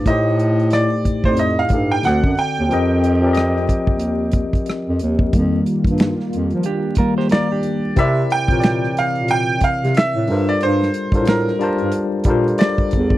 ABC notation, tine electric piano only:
X:1
M:4/4
L:1/16
Q:"Swing 16ths" 1/4=91
K:Fmix
V:1 name="Tine electric piano"
[A,,A,EGc]6 z [A,,A,EGd]3 [A,,A,EGA]2 [D,C^FAd]4 | [F,CGBe]3 [F,CGBde]6- [F,CGBde] z6 | [E,G,B,]6 z4 [E,G,B,]2 z4 | [K:Cmix] [C,CEBd]3 [C,E,CB^cd]6- [=C,E,CB^cd] z4 [G,DFAB=c]2- |
[G,DFABc]3 [G,DFABc]3 [G,DFBca]4 [G,DFABc]4- [G,DFABc] z |]